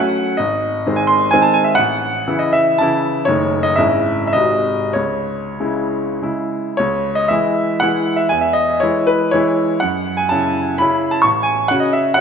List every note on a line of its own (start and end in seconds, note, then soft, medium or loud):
0.00 0.35 F#3 soft
0.00 0.35 A3 soft
0.00 0.36 C#4 soft
0.00 0.38 F#5 medium
0.37 0.84 G#1 medium
0.37 0.97 D#5 medium
0.87 1.30 D#3 soft
0.87 1.30 G#3 soft
0.87 1.31 C4 soft
0.96 1.09 G#5 medium
1.07 1.32 C6 medium
1.31 1.75 D#3 medium
1.31 1.75 G#3 medium
1.31 1.75 C4 medium
1.31 1.44 G#5 loud
1.42 1.55 A5 medium
1.54 1.66 G#5 medium
1.64 1.77 E5 medium
1.75 2.26 A1 medium
1.75 2.40 F#5 medium
2.27 2.76 C#3 soft
2.27 2.76 E3 soft
2.27 2.76 E4 medium
2.39 2.54 D#5 medium
2.53 2.79 E5 loud
2.78 3.23 C#3 soft
2.78 3.24 E3 soft
2.78 3.24 E4 medium
2.78 3.26 A5 medium
3.25 3.76 F#1 medium
3.25 3.74 D#3 soft
3.25 3.74 A3 soft
3.25 3.74 D#4 soft
3.25 3.63 C#5 medium
3.63 3.77 D#5 medium
3.76 4.33 G#1 medium
3.76 4.31 C#3 soft
3.76 4.31 G#3 soft
3.76 4.31 E4 soft
3.76 4.25 E5 medium
4.27 4.35 E5 medium
4.33 4.93 G#1 medium
4.33 4.91 C3 soft
4.33 4.91 G#3 soft
4.33 4.91 F#4 soft
4.33 4.94 D#5 medium
4.93 5.57 C#2 soft
4.93 6.21 C#5 medium
5.60 6.18 C#3 soft
5.60 6.18 G#3 soft
5.60 6.18 E4 soft
6.22 6.75 C#3 soft
6.22 6.75 G#3 soft
6.22 6.75 E4 soft
6.77 7.29 C#2 medium
6.77 7.16 C#5 medium
7.15 7.29 D#5 medium
7.28 7.77 E3 soft
7.28 7.77 G#3 soft
7.28 7.78 E4 soft
7.28 7.80 E5 medium
7.80 8.26 E3 soft
7.80 8.27 G#3 soft
7.80 8.27 E4 medium
7.80 8.17 F#5 medium
8.16 8.29 E5 medium
8.29 8.81 E2 soft
8.29 8.42 G#5 medium
8.41 8.55 E5 medium
8.53 8.81 D#5 medium
8.80 9.30 E3 soft
8.80 9.30 G#3 soft
8.80 9.30 E4 soft
8.80 9.08 C#5 medium
9.07 9.33 B4 medium
9.31 9.77 E3 medium
9.31 9.77 G#3 soft
9.31 9.77 E4 medium
9.31 9.80 C#5 medium
9.80 10.30 F#2 soft
9.80 10.17 F#5 medium
10.17 10.30 G#5 medium
10.29 10.76 C#3 soft
10.29 10.76 C#4 soft
10.29 10.76 E4 soft
10.29 10.79 A5 medium
10.78 11.20 C#3 soft
10.78 11.20 C#4 soft
10.78 11.20 E4 medium
10.78 11.12 B5 medium
11.11 11.23 A5 medium
11.22 11.69 A1 soft
11.22 11.45 C#6 medium
11.43 11.69 G#5 medium
11.68 12.12 C#3 soft
11.68 12.12 C#4 soft
11.68 12.13 F#4 soft
11.68 11.82 F#5 medium
11.80 11.93 D#5 medium
11.93 12.16 E5 medium
12.14 12.21 C#3 soft
12.14 12.21 C#4 soft
12.14 12.21 F#4 medium
12.14 12.21 F#5 medium